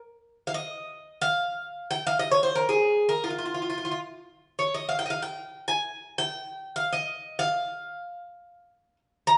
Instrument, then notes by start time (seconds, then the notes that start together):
bouzouki
0.47 F5
0.54 D#5
1.22 F5
1.91 G5
2.07 F5
2.19 D#5
2.31 C#5
2.43 C5
2.55 A#4
2.69 G#4
3.09 A#4
3.24 F4
3.30 F4
3.39 F4
3.46 F4
3.54 F4
3.62 F4
3.70 F4
3.78 F4
3.85 F4
3.92 F4
4.59 C#5
4.74 D#5
4.89 F5
4.99 G5
5.06 D#5
5.10 F5
5.22 G5
5.68 G#5
6.18 G5
6.76 F5
6.93 D#5
7.39 F5
9.27 A#5